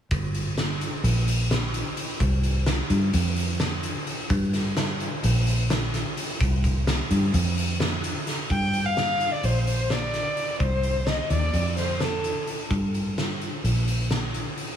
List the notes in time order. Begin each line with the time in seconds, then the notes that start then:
0.11 G1, kick, closed hi-hat
0.34 closed hi-hat
0.58 snare, closed hi-hat
0.81 closed hi-hat
1.04 A#1, closed hi-hat
1.28 closed hi-hat
1.51 snare, closed hi-hat
1.74 closed hi-hat
1.97 closed hi-hat
2.20 C2, kick, closed hi-hat
2.43 closed hi-hat
2.66 snare, closed hi-hat
2.90 G2, closed hi-hat
3.13 F2, closed hi-hat
3.36 closed hi-hat
3.60 snare, closed hi-hat
3.83 closed hi-hat
4.07 closed hi-hat
4.30 G2, kick, closed hi-hat
4.53 snare, closed hi-hat
4.77 snare, closed hi-hat
5.00 closed hi-hat
5.23 A#1, closed hi-hat
5.47 closed hi-hat
5.70 snare, closed hi-hat
5.94 snare, closed hi-hat
6.17 closed hi-hat
6.41 C2, kick, closed hi-hat
6.64 kick, closed hi-hat
6.87 snare, closed hi-hat
7.11 G2, closed hi-hat
7.34 F2, closed hi-hat
7.57 closed hi-hat
7.80 snare, closed hi-hat
8.04 closed hi-hat
8.27 snare, closed hi-hat
8.50 G2 G5, kick, closed hi-hat
8.73 closed hi-hat
8.86 F5
8.97 snare, closed hi-hat
9.20 closed hi-hat
9.32 D5
9.43 A#1 C5, closed hi-hat
9.67 C5, closed hi-hat
9.90 D5, snare, closed hi-hat
10.14 snare, closed hi-hat
10.37 closed hi-hat
10.60 C2 C5, kick, closed hi-hat
10.83 closed hi-hat
11.07 D#5, snare, closed hi-hat
11.30 D#2 D5, closed hi-hat
11.53 F2, closed hi-hat
11.77 C5, snare, closed hi-hat
12.00 A4, snare, closed hi-hat
12.24 closed hi-hat
12.47 closed hi-hat
12.70 G2, kick, closed hi-hat
12.94 closed hi-hat
13.18 snare, closed hi-hat
13.41 closed hi-hat
13.64 A#1, closed hi-hat
13.88 closed hi-hat
14.11 snare, closed hi-hat
14.34 closed hi-hat
14.57 closed hi-hat